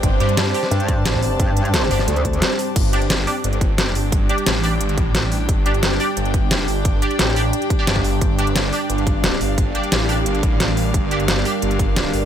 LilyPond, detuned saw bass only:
\new Staff \with { instrumentName = "Detuned saw bass" } { \clef bass \time 4/4 \key g \minor \tempo 4 = 176 g,,8 g,4 r4. a,,4 | r4. g,,8 r2 | g,,4. r8 g,,4. g,,8~ | g,,8 r8 a,,4 g,,8 a,,8 a,,4 |
g,,4. r8 g,,4. g,,8~ | g,,8 r8 a,,4 r4 g,,4 | g,,4. r8 g,,4. g,,8~ | g,,8 r8 a,,4 g,,8 a,,8 a,,4 |
g,,4. r8 g,,4. g,,8 | }